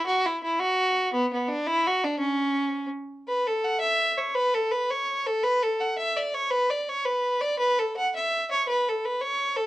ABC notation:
X:1
M:6/8
L:1/16
Q:3/8=112
K:Bdor
V:1 name="Fiddle"
F2 E2 E2 F6 | B,2 B,2 D2 E2 F2 D2 | C8 z4 | B2 A2 f2 e4 c2 |
B2 A2 B2 c4 A2 | B2 A2 f2 e2 d2 c2 | B2 d3/2 d/2 c2 B4 d2 | B2 A2 f2 e4 c2 |
B2 A2 B2 c4 A2 |]